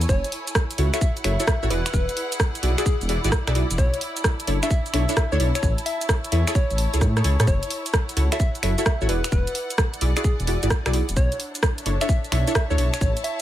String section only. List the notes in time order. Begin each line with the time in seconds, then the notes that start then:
Already playing: E4 A4 C#5 G#5
0.83 F#5
1.87 G#4
1.92 D5
4.17 A5
6.03 C#5
7.90 F#5
9.43 D5
10.03 G#5
11.17 D4
11.64 C#5
11.76 E5
11.81 A5
13.01 E4